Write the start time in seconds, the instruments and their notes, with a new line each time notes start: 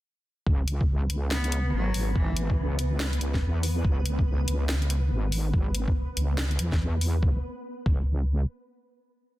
0.47 wobble bass C#2, synth texture B3 B4, kick
0.68 closed hi-hat
0.81 kick
1.10 wobble bass C#2, closed hi-hat
1.31 cello B3, snare
1.44 closed hi-hat
1.52 closed hi-hat
1.73 wobble bass G#1, cello F#3
1.94 open hi-hat
2.16 cello E3, kick
2.37 closed hi-hat
2.50 kick
2.58 wobble bass C#2
2.79 closed hi-hat
3.00 snare
3.13 closed hi-hat
3.21 closed hi-hat
3.34 kick, snare
3.42 wobble bass E2
3.63 open hi-hat
3.85 wobble bass C#2, kick
4.06 closed hi-hat
4.19 kick
4.48 wobble bass C#2, closed hi-hat
4.69 snare
4.82 closed hi-hat
4.90 closed hi-hat
5.11 wobble bass G#1
5.32 open hi-hat
5.54 kick
5.75 closed hi-hat
5.88 kick
6.17 wobble bass C#2, closed hi-hat
6.38 snare
6.51 closed hi-hat
6.59 wobble bass E2, closed hi-hat
6.72 kick, snare
7.01 open hi-hat
7.23 wobble bass C#2, kick
7.86 wobble bass C#2, kick